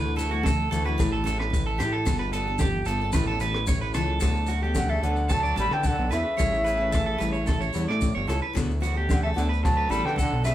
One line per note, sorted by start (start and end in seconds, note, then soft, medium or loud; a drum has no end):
0.00 0.69 D2 loud
0.00 0.16 B4 medium
0.16 0.31 E3 medium
0.16 0.31 A3 medium
0.16 0.31 E4 medium
0.16 0.30 F#4 medium
0.16 0.30 A4 medium
0.16 closed hi-hat medium
0.16 muted conga soft
0.16 maracas medium
0.31 0.49 A3 medium
0.31 0.48 E4 medium
0.31 0.44 F#4 medium
0.31 0.47 F#4 medium
0.43 0.70 A4 medium
0.43 kick medium
0.43 cross-stick medium
0.43 high conga medium
0.43 maracas medium
0.71 0.97 D2 medium
0.71 0.85 E3 medium
0.71 0.86 A3 medium
0.71 0.86 E4 medium
0.71 0.84 F#4 medium
0.71 0.85 A4 medium
0.71 closed hi-hat medium
0.71 maracas medium
0.85 0.97 A3 medium
0.85 0.99 E4 medium
0.85 0.98 F#4 medium
0.85 1.11 B4 medium
0.97 1.25 A1 loud
0.97 1.15 E3 medium
0.97 1.15 A3 medium
0.97 1.15 D4 medium
0.97 1.16 A4 medium
0.97 kick medium
0.97 cross-stick medium
0.97 muted conga soft
0.97 maracas medium
1.12 1.25 A4 medium
1.24 1.82 A1 loud
1.24 1.42 A3 medium
1.24 1.42 D4 medium
1.24 1.39 A4 medium
1.24 1.42 A4 medium
1.24 muted steel-string acoustic guitar stroke medium
1.24 closed hi-hat medium
1.24 high conga medium
1.24 maracas medium
1.39 1.65 B4 medium
1.39 cross-stick medium
1.50 kick medium
1.50 high conga medium
1.50 maracas medium
1.66 1.79 A4 medium
1.77 2.09 A2 loud
1.77 1.95 E3 medium
1.77 1.96 A3 medium
1.77 1.96 D4 medium
1.77 1.92 G4 medium
1.77 cross-stick medium
1.77 closed hi-hat medium
1.77 muted conga soft
1.77 maracas medium
1.93 2.18 A4 medium
2.05 2.84 G1 loud
2.05 2.22 B3 medium
2.05 2.23 D4 medium
2.05 2.23 A4 medium
2.05 kick medium
2.05 cross-stick medium
2.05 muted conga soft
2.05 maracas medium
2.19 2.32 B4 medium
2.32 2.47 B3 medium
2.32 2.48 D4 medium
2.32 2.59 A4 medium
2.32 2.47 A4 medium
2.32 closed hi-hat medium
2.32 muted conga soft
2.32 maracas medium
2.48 2.65 D4 soft
2.48 2.63 A4 medium
2.59 2.85 G4 medium
2.59 kick medium
2.59 cross-stick medium
2.59 high conga medium
2.59 maracas medium
2.85 3.12 G1 loud
2.85 3.01 B3 medium
2.85 3.12 A4 medium
2.85 closed hi-hat medium
2.85 maracas medium
2.90 3.02 D4 medium
2.90 3.00 A4 medium
3.01 3.16 D4 soft
3.01 3.14 A4 medium
3.12 3.40 A1 loud
3.12 3.31 E3 medium
3.12 3.31 A3 medium
3.12 3.27 B4 medium
3.12 kick medium
3.12 cross-stick medium
3.12 muted conga soft
3.12 high conga medium
3.12 maracas medium
3.17 3.32 D4 medium
3.17 3.32 A4 loud
3.27 3.40 A4 medium
3.40 3.96 A1 medium
3.40 3.57 E3 medium
3.40 3.58 A3 medium
3.40 3.58 D4 medium
3.40 3.66 B4 medium
3.40 closed hi-hat soft
3.40 maracas medium
3.44 3.59 A4 medium
3.55 cross-stick medium
3.67 3.81 C#5 medium
3.67 kick medium
3.67 high conga medium
3.67 maracas medium
3.81 3.94 B4 medium
3.94 4.20 C#2 loud
3.94 4.12 E3 medium
3.94 4.12 A3 medium
3.94 4.13 D4 medium
3.94 4.20 A4 medium
3.94 cross-stick medium
3.94 closed hi-hat medium
3.94 muted conga soft
3.94 maracas medium
3.98 4.13 A4 medium
4.20 4.99 D2 medium
4.20 4.38 F#3 medium
4.20 4.39 B3 medium
4.20 4.39 D4 medium
4.20 4.47 A4 medium
4.20 4.39 A4 medium
4.20 kick medium
4.20 cross-stick medium
4.20 maracas loud
4.46 4.62 F#3 medium
4.46 4.63 D4 medium
4.46 4.62 F#4 medium
4.46 closed hi-hat soft
4.46 muted conga soft
4.46 maracas medium
4.51 4.61 A4 medium
4.62 4.80 B3 soft
4.62 4.79 D4 soft
4.62 4.88 G4 medium
4.62 4.78 A4 medium
4.75 4.92 D3 medium
4.75 4.91 F#5 medium
4.75 kick medium
4.75 cross-stick medium
4.75 high conga medium
4.75 maracas loud
4.89 5.03 C#3 medium
4.89 5.15 A4 medium
4.89 5.03 E5 medium
5.03 5.54 D2 medium
5.03 5.33 D3 medium
5.03 5.19 F#3 medium
5.03 5.20 B3 medium
5.03 5.20 D4 medium
5.03 5.21 A4 medium
5.03 5.33 F#5 medium
5.03 closed hi-hat medium
5.16 maracas soft
5.29 5.58 F#3 medium
5.29 5.43 A4 medium
5.29 5.58 A5 loud
5.29 kick medium
5.29 cross-stick medium
5.29 muted conga soft
5.29 maracas medium
5.43 5.56 D5 medium
5.43 maracas soft
5.56 5.70 A1 medium
5.56 5.73 F#3 medium
5.56 5.74 G3 medium
5.56 5.74 B3 medium
5.56 5.74 D4 medium
5.56 5.82 A4 medium
5.56 5.75 A4 medium
5.56 5.75 B5 loud
5.56 closed hi-hat medium
5.56 high conga medium
5.56 maracas medium
5.71 5.97 D3 medium
5.71 5.88 E3 medium
5.71 5.88 G5 medium
5.71 cross-stick medium
5.83 6.12 D3 medium
5.83 6.09 A4 medium
5.83 6.12 F#5 medium
5.83 kick medium
5.83 high conga medium
5.83 maracas medium
5.99 6.11 B1 medium
6.10 6.25 E2 medium
6.10 6.27 F#3 medium
6.10 6.27 B3 medium
6.10 6.28 D4 medium
6.10 6.28 A4 medium
6.10 6.36 B4 medium
6.10 7.70 E5 medium
6.10 cross-stick medium
6.10 closed hi-hat soft
6.10 muted conga soft
6.10 maracas medium
6.15 7.71 C#3 medium
6.37 7.16 A1 medium
6.37 6.54 G3 medium
6.37 6.55 C#4 medium
6.37 6.54 E4 medium
6.37 6.55 A4 medium
6.37 6.63 C#5 medium
6.37 kick medium
6.37 cross-stick medium
6.37 muted conga soft
6.37 maracas medium
6.54 maracas soft
6.64 6.79 C#4 medium
6.64 6.79 E4 medium
6.64 6.76 A4 medium
6.64 6.90 B4 medium
6.64 closed hi-hat soft
6.64 muted conga soft
6.64 maracas medium
6.77 6.96 C#4 soft
6.77 6.94 A4 medium
6.92 7.05 A4 medium
6.92 kick medium
6.92 cross-stick medium
6.92 high conga medium
6.92 maracas medium
7.06 7.18 A4 medium
7.18 7.71 A1 medium
7.18 7.35 G3 medium
7.18 7.35 C#4 medium
7.18 7.36 E4 medium
7.18 7.37 A4 medium
7.18 7.32 B4 medium
7.18 closed hi-hat soft
7.18 maracas medium
7.33 7.45 C#5 medium
7.33 maracas soft
7.46 7.60 A4 medium
7.46 kick medium
7.46 cross-stick medium
7.46 muted conga soft
7.46 high conga medium
7.46 maracas medium
7.60 7.86 C#5 medium
7.60 maracas soft
7.73 7.88 E2 medium
7.73 7.90 G3 medium
7.73 7.90 C#4 medium
7.73 7.90 E4 medium
7.73 7.91 A4 medium
7.73 closed hi-hat soft
7.73 maracas medium
7.89 8.14 A2 medium
7.89 8.14 D5 medium
7.89 cross-stick medium
8.01 kick medium
8.01 high conga medium
8.01 maracas medium
8.15 8.27 G1 medium
8.15 8.27 C#5 medium
8.27 8.41 C#2 medium
8.27 8.44 G3 medium
8.27 8.44 C#4 medium
8.27 8.44 E4 medium
8.27 8.41 A4 medium
8.27 8.45 A4 medium
8.27 cross-stick medium
8.27 closed hi-hat soft
8.27 muted conga soft
8.27 maracas medium
8.42 8.54 B4 medium
8.53 8.71 F#3 medium
8.53 8.71 B3 medium
8.53 8.71 F#4 medium
8.53 8.71 A4 medium
8.53 muted clean electric guitar stroke medium
8.53 kick medium
8.53 cross-stick medium
8.53 muted conga soft
8.53 maracas medium
8.57 9.33 D2 loud
8.70 maracas soft
8.80 8.95 F#3 medium
8.80 8.96 B3 medium
8.80 8.95 F#4 medium
8.80 8.93 A4 medium
8.80 muted conga soft
8.80 maracas medium
8.85 closed hi-hat soft
8.95 9.22 G4 medium
8.95 9.11 A4 soft
8.95 muted steel-string acoustic guitar stroke soft
9.09 9.23 D3 medium
9.09 9.23 F#5 medium
9.09 kick medium
9.09 cross-stick medium
9.09 high conga medium
9.09 maracas medium
9.23 9.31 C#3 medium
9.23 9.49 A4 medium
9.23 9.29 E5 medium
9.34 9.88 D2 medium
9.34 9.49 D3 medium
9.34 9.52 F#3 medium
9.34 9.52 B3 medium
9.34 9.53 F#4 medium
9.34 9.53 A4 medium
9.34 9.42 F#5 medium
9.34 closed hi-hat soft
9.38 maracas medium
9.49 9.62 B4 medium
9.49 maracas soft
9.63 9.92 F#3 medium
9.63 9.92 A5 medium
9.63 muted clean electric guitar stroke medium
9.63 kick medium
9.63 cross-stick medium
9.63 muted conga soft
9.63 maracas medium
9.77 9.89 B4 medium
9.89 10.03 A1 medium
9.89 10.06 F#3 medium
9.89 10.08 G3 medium
9.89 10.07 B3 medium
9.89 10.07 F#4 medium
9.89 10.16 A4 medium
9.89 10.08 A4 medium
9.89 10.07 B5 loud
9.89 closed hi-hat medium
9.89 high conga medium
9.89 maracas medium
10.05 10.30 D3 medium
10.05 10.18 E3 medium
10.05 10.18 G5 medium
10.05 cross-stick medium
10.16 10.43 A4 medium
10.16 10.43 F#5 medium
10.16 kick medium
10.16 high conga medium
10.16 maracas medium
10.21 10.44 D3 medium
10.32 10.44 B1 medium
10.43 10.55 B1 medium
10.43 10.55 F#3 medium
10.43 10.55 B3 medium
10.43 10.55 F#4 medium
10.43 10.55 A4 medium
10.43 10.55 B4 medium
10.43 10.55 E5 medium
10.43 cross-stick medium
10.43 closed hi-hat medium
10.43 muted conga soft
10.43 maracas medium
10.48 10.55 C#3 medium